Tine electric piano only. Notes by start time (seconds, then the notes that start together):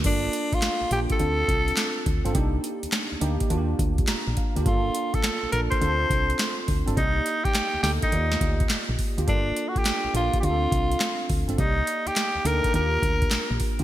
0.04 A#3 D4 F4 A4
0.91 A#3 D4 F4 G4
1.19 C4 D4 F4 A4
2.24 C4 D4 F4 A4
2.34 A#3 D4 D#4 G4
3.21 A#3 D4 D#4 G4
3.50 A#3 D4 F4 F#4
3.58 G4
4.08 A#5
4.37 F5
4.55 A#3 D4 F4 G4
4.66 A#3 D4 F4 A4
5.52 A#3 D4 F4 A4
5.81 C4 D4 F4 A4
6.86 C4 D4 F4 A4
6.96 A#3 D#4 G4 D5
7.83 A#3 D4 D#4 A4
8.12 A#3 F4 G4 D5
9.17 A#3 D4 F4 G4
9.27 A#3 D4 F4 A4
10.13 A#3 D4 F4 G4
10.43 C4 D4 F4 G4
10.51 A4
11.48 C4 D4 F4 A4
11.58 A#3 D#4 G4 D5
12.44 A#3 D4 D#4 A4
12.74 A#3 D4 F4 G4
13.79 A#3 D4 F4 G4